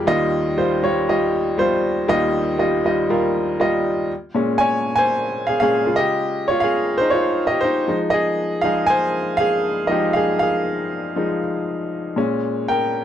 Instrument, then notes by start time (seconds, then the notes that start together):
upright piano
0.07 D#2 D#3 G3 F4 D#5
0.57 G3 F4 C5
0.82 G3 F4 C#5
1.09 G3 F4 D#5
1.58 G3 F4 C5
2.08 D#2 D#3 G3 F4 D#5
2.58 G3 F4 D#5
2.85 G3 F4 D#5
3.10 G3 F4 A#4
3.60 G3 F4 D#5
4.34 A#2 G#3 C#4
4.58 C#5 G#5
4.96 C5 G#5
5.47 G#4 F5
5.60 A#2 G#3 C#4 G#4 F5
5.86 C#3 G#3 F4
5.96 G4 D#5
6.48 F4 C#5
6.60 G#4 F5
6.98 D#4 C5
7.10 F4 C#5
7.47 G4 D#5
7.61 D#4 C5
7.88 F3 G#3 D#4
8.10 G#4 D#5
8.61 F3 G#3 D#4 G#4 F5
8.87 C5 G#5
9.37 G#4 F5
9.87 F3 G#3 D#4 G4 D#5
10.13 G#4 F5
10.39 G#4 F5
11.16 F3 G#3 D#4
12.16 A#2 G#3 C#4
12.68 A#4 G5